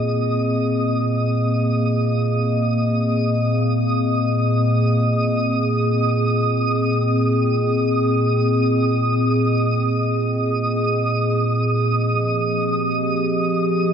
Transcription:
0.00 11.90 A#2 medium
0.00 13.09 A#3 medium
0.00 13.93 C4 medium
0.00 13.93 G#4 medium
0.00 13.93 D#5 medium
0.00 13.93 D#6 medium
11.90 13.93 F3 medium
12.48 13.93 G4 medium

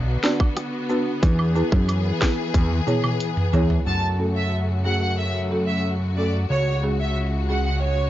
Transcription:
0.00 0.18 B1 loud
0.00 1.20 D3 medium
0.00 3.83 B3 medium
0.00 1.19 F#4 medium
0.23 0.37 B3 medium
0.23 0.37 D4 medium
0.23 0.37 F#4 medium
0.23 0.37 D5 loud
0.23 cross-stick medium
0.23 snare loud
0.23 cabasa medium
0.40 kick loud
0.40 high woodblock medium
0.57 cross-stick medium
0.57 closed hi-hat medium
0.89 1.03 B3 medium
0.89 1.03 D4 medium
0.89 1.03 F#4 medium
0.89 1.03 B4 loud
0.89 cabasa medium
1.23 1.63 E2 loud
1.23 3.84 E3 medium
1.23 3.84 G#4 loud
1.23 kick loud
1.23 closed hi-hat medium
1.39 high woodblock medium
1.55 1.69 B3 medium
1.55 1.69 E4 medium
1.55 1.69 G#4 medium
1.55 1.69 B4 loud
1.55 cabasa medium
1.72 2.12 F#2 loud
1.72 kick loud
1.88 closed hi-hat medium
1.88 high woodblock medium
2.21 2.35 B3 medium
2.21 2.35 E4 medium
2.21 2.35 G#4 medium
2.21 2.35 B4 loud
2.21 kick medium
2.21 cross-stick medium
2.21 snare loud
2.21 cabasa medium
2.54 2.81 E2 loud
2.54 kick loud
2.54 closed hi-hat medium
2.54 high tom medium
2.71 high tom medium
2.87 3.00 B3 medium
2.87 3.00 E4 medium
2.87 3.01 G#4 medium
2.87 3.01 C#5 loud
2.87 mid tom medium
2.87 cabasa medium
3.04 mid tom medium
3.04 high woodblock medium
3.20 closed hi-hat medium
3.37 mid tom medium
3.53 3.80 E2 medium
3.53 3.66 B3 medium
3.53 3.67 E4 medium
3.53 3.67 G#4 medium
3.53 3.67 C#5 loud
3.53 floor tom loud
3.53 cabasa medium
3.70 floor tom loud
3.87 6.46 F#2 medium
3.87 6.48 C#3 medium
3.87 6.48 A3 medium
3.87 8.10 F#4 medium
3.87 3.98 A5 loud
4.19 4.32 A3 medium
4.19 4.32 C#4 medium
4.19 4.33 F#4 medium
4.19 4.33 A4 medium
4.36 4.48 E5 medium
4.85 4.98 A3 medium
4.85 4.98 C#4 medium
4.85 4.99 F#4 medium
4.85 4.99 G#4 medium
4.85 4.97 F#5 medium
5.02 5.14 F#5 medium
5.19 5.30 E5 medium
5.51 5.64 A3 medium
5.51 5.64 C#4 medium
5.51 5.65 F#4 medium
5.51 5.65 A4 medium
5.67 5.79 E5 medium
6.17 6.30 A3 medium
6.17 6.31 C#4 medium
6.17 6.31 F#4 medium
6.17 6.31 A4 medium
6.17 6.29 D5 medium
6.50 8.10 C#2 medium
6.50 8.10 C#3 medium
6.50 8.10 G#3 medium
6.50 6.74 C#5 loud
6.83 6.96 G#3 medium
6.83 6.96 C#4 medium
6.83 6.96 F#4 medium
6.83 6.97 G#4 medium
7.00 7.12 E5 medium
7.49 7.62 G#3 medium
7.49 7.62 C#4 medium
7.49 7.62 F#4 medium
7.49 7.63 G#4 medium
7.49 7.61 F#5 medium
7.66 7.77 F#5 medium
7.83 8.10 C#5 medium

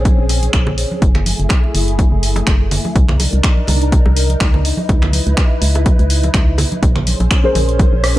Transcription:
0.00 0.13 A#1 medium
0.00 1.00 C4 medium
0.00 1.00 C#4 medium
0.00 1.00 G#4 medium
0.05 kick loud
0.05 closed hi-hat medium
0.05 high conga medium
0.19 0.49 A#1 loud
0.29 open hi-hat loud
0.29 high bongo medium
0.42 closed hi-hat soft
0.42 high conga medium
0.53 0.85 A#1 medium
0.53 finger snap loud
0.53 kick loud
0.53 closed hi-hat medium
0.67 high bongo medium
0.67 low conga medium
0.78 open hi-hat loud
0.92 high conga medium
1.02 1.34 F#1 medium
1.02 2.94 A3 medium
1.02 2.94 E4 medium
1.02 2.94 G#4 medium
1.02 kick loud
1.02 closed hi-hat medium
1.15 finger snap soft
1.15 high bongo soft
1.15 low conga medium
1.26 open hi-hat loud
1.26 high conga loud
1.40 1.48 F#1 medium
1.40 closed hi-hat soft
1.49 finger snap loud
1.49 kick loud
1.49 closed hi-hat medium
1.49 high bongo medium
1.64 high conga medium
1.75 2.06 F#1 medium
1.75 open hi-hat loud
1.88 closed hi-hat soft
1.99 kick loud
1.99 closed hi-hat medium
1.99 high bongo medium
1.99 high conga medium
2.12 2.43 F#1 loud
2.23 open hi-hat loud
2.36 closed hi-hat soft
2.36 high bongo medium
2.36 high conga medium
2.47 2.79 F#1 medium
2.47 finger snap loud
2.47 kick loud
2.47 closed hi-hat medium
2.71 open hi-hat loud
2.71 low conga medium
2.85 high bongo soft
2.85 high conga medium
2.96 3.27 C2 loud
2.96 4.63 D4 medium
2.96 6.79 D#4 medium
2.96 4.63 A#4 medium
2.96 kick loud
2.96 closed hi-hat medium
3.08 finger snap soft
3.08 low conga medium
3.20 open hi-hat loud
3.20 high bongo medium
3.20 high conga loud
3.33 3.41 C2 medium
3.33 closed hi-hat soft
3.43 finger snap loud
3.43 kick loud
3.43 closed hi-hat medium
3.57 high conga medium
3.67 4.00 C2 medium
3.67 open hi-hat loud
3.67 high bongo medium
3.67 low conga medium
3.82 closed hi-hat soft
3.92 kick loud
3.92 closed hi-hat medium
3.92 high conga medium
4.06 4.36 C2 loud
4.06 high bongo medium
4.17 open hi-hat loud
4.29 closed hi-hat soft
4.29 high conga medium
4.40 4.73 C#2 medium
4.40 finger snap loud
4.40 kick loud
4.40 closed hi-hat medium
4.54 high bongo soft
4.54 low conga medium
4.65 6.81 E4 medium
4.65 6.81 B4 medium
4.65 open hi-hat loud
4.77 high conga medium
4.89 5.21 C#2 loud
4.89 kick loud
4.89 closed hi-hat medium
4.89 high bongo medium
5.02 finger snap soft
5.02 low conga medium
5.13 open hi-hat loud
5.13 high conga medium
5.27 5.35 C#2 medium
5.27 closed hi-hat soft
5.37 finger snap loud
5.37 kick loud
5.37 closed hi-hat medium
5.37 high bongo soft
5.51 high conga medium
5.62 5.94 C#2 medium
5.62 open hi-hat loud
5.75 closed hi-hat soft
5.75 high bongo medium
5.86 kick loud
5.86 closed hi-hat medium
5.86 high conga medium
5.99 6.30 C#2 loud
5.99 closed hi-hat soft
6.10 open hi-hat loud
6.23 closed hi-hat soft
6.23 high bongo medium
6.23 high conga medium
6.34 6.66 C#2 loud
6.34 finger snap loud
6.34 kick loud
6.34 closed hi-hat medium
6.58 open hi-hat loud
6.58 high bongo medium
6.58 low conga medium
6.72 closed hi-hat soft
6.72 high conga medium
6.83 7.14 A#1 loud
6.83 8.19 C#4 medium
6.83 8.19 G#4 medium
6.83 8.19 C5 medium
6.83 kick loud
6.83 closed hi-hat medium
6.96 finger snap soft
6.96 low conga medium
7.07 open hi-hat loud
7.07 high conga medium
7.20 7.28 A#1 medium
7.20 closed hi-hat soft
7.20 high bongo medium
7.31 finger snap loud
7.31 kick loud
7.31 closed hi-hat medium
7.44 8.13 C#4 medium
7.44 8.14 G#4 medium
7.44 8.14 A#4 medium
7.44 8.14 C5 loud
7.44 high conga medium
7.55 7.87 A#1 medium
7.55 open hi-hat loud
7.55 high bongo medium
7.55 low conga medium
7.69 closed hi-hat soft
7.79 kick loud
7.79 closed hi-hat medium
7.79 high conga medium
7.93 8.19 A#1 loud
8.04 cross-stick medium
8.04 open hi-hat loud
8.04 high bongo soft

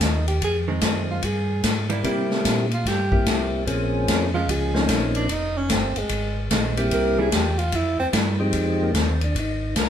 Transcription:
0.00 0.40 D#2 medium
0.00 0.27 D#4 medium
0.00 kick soft
0.00 snare medium
0.00 hi-hat pedal medium
0.00 ride medium
0.28 0.41 G4 medium
0.28 ride soft
0.41 0.81 F2 medium
0.41 0.59 G#4 medium
0.41 kick soft
0.41 ride medium
0.68 1.20 D#3 medium
0.68 1.20 G#3 medium
0.68 1.21 C4 medium
0.81 1.22 F#2 medium
0.81 kick soft
0.81 snare medium
0.81 hi-hat pedal medium
0.81 ride medium
1.11 1.26 F4 medium
1.22 1.62 G2 medium
1.22 1.65 G#4 medium
1.22 kick soft
1.22 ride medium
1.63 2.03 G#2 medium
1.63 kick soft
1.63 snare medium
1.63 hi-hat pedal medium
1.63 ride medium
1.90 2.03 G3 medium
1.90 2.03 A#3 medium
1.90 2.04 E4 medium
1.90 ride soft
2.04 2.44 C3 medium
2.04 2.66 G3 medium
2.04 2.28 G3 medium
2.04 2.66 A#3 medium
2.04 2.28 A#3 medium
2.04 2.66 C4 medium
2.04 2.28 E4 medium
2.04 2.66 E4 medium
2.04 2.67 G4 medium
2.04 kick soft
2.04 ride medium
2.31 snare soft
2.45 2.84 A#2 medium
2.45 kick soft
2.45 snare medium
2.45 hi-hat pedal medium
2.45 ride medium
2.71 2.89 F4 medium
2.71 ride soft
2.85 3.25 G2 medium
2.85 3.27 G4 loud
2.85 kick soft
2.85 snare soft
2.85 ride medium
3.12 3.64 G3 medium
3.12 3.64 A#3 medium
3.12 3.64 C4 medium
3.12 3.64 E4 medium
3.12 3.64 G4 medium
3.12 kick medium
3.26 3.66 C2 medium
3.26 kick soft
3.26 snare medium
3.26 hi-hat pedal medium
3.26 ride medium
3.66 4.06 A#1 medium
3.66 4.28 F3 medium
3.66 4.29 A#3 medium
3.66 4.29 C4 medium
3.66 4.29 C#4 medium
3.66 4.29 G#4 medium
3.66 kick soft
3.66 ride medium
4.07 4.47 F2 medium
4.07 kick soft
4.07 snare medium
4.07 hi-hat pedal medium
4.07 ride medium
4.34 4.86 F3 medium
4.34 4.87 G#3 medium
4.34 4.87 C#4 medium
4.34 4.52 F4 medium
4.48 4.88 C#2 medium
4.48 4.90 G#4 medium
4.48 kick soft
4.48 ride medium
4.74 5.26 F3 medium
4.74 5.26 A#3 medium
4.74 5.26 C4 medium
4.74 5.27 C#4 medium
4.74 5.27 D#4 medium
4.74 snare medium
4.88 5.28 A#1 medium
4.88 kick soft
4.88 snare medium
4.88 hi-hat pedal medium
4.88 ride medium
5.15 5.34 D4 medium
5.15 ride soft
5.29 5.69 F1 medium
5.29 5.59 D#4 loud
5.29 kick soft
5.29 ride medium
5.57 5.73 C#4 medium
5.69 5.94 G1 medium
5.69 6.00 C4 medium
5.69 kick soft
5.69 snare medium
5.69 hi-hat pedal medium
5.69 ride medium
5.96 6.04 G1 soft
5.96 6.52 G#3 medium
5.96 ride soft
6.09 6.50 G#1 medium
6.09 kick soft
6.09 ride medium
6.51 6.90 A#1 medium
6.51 6.75 D#3 medium
6.51 6.75 G#3 medium
6.51 6.75 C4 medium
6.51 kick soft
6.51 snare medium
6.51 hi-hat pedal medium
6.51 ride medium
6.77 7.29 G3 medium
6.77 7.29 A#3 medium
6.77 7.30 C4 medium
6.77 7.30 E4 medium
6.77 7.30 G4 medium
6.77 ride soft
6.91 7.31 C2 medium
6.91 7.21 A#4 medium
6.91 kick soft
6.91 ride medium
7.19 7.31 G3 medium
7.19 7.32 A#3 medium
7.19 7.32 E4 medium
7.19 7.36 G#4 loud
7.32 7.72 E2 medium
7.32 7.60 G4 medium
7.32 kick soft
7.32 snare medium
7.32 hi-hat pedal medium
7.32 ride medium
7.59 7.76 F4 medium
7.59 ride soft
7.72 7.97 F2 medium
7.72 7.99 E4 medium
7.72 kick soft
7.72 ride medium
7.99 8.06 F2 soft
7.99 8.08 C4 medium
8.13 8.53 G2 medium
8.13 8.37 G3 medium
8.13 8.37 A#3 medium
8.13 8.37 E4 medium
8.13 kick soft
8.13 snare medium
8.13 hi-hat pedal medium
8.13 ride medium
8.39 8.91 F3 medium
8.39 8.92 G#3 medium
8.39 8.92 C4 medium
8.39 8.92 D#4 medium
8.39 8.92 G4 medium
8.53 8.93 F2 medium
8.53 kick soft
8.53 ride medium
8.83 8.96 A#3 medium
8.94 9.34 D#2 medium
8.94 9.21 C4 medium
8.94 kick soft
8.94 snare medium
8.94 hi-hat pedal medium
8.94 ride medium
9.21 9.36 D4 medium
9.21 ride soft
9.35 9.74 G#1 medium
9.35 kick soft
9.35 ride medium
9.39 9.75 D#4 medium
9.76 9.89 C2 medium
9.76 9.89 A#4 medium
9.76 kick soft
9.76 snare medium
9.76 hi-hat pedal medium
9.76 ride medium

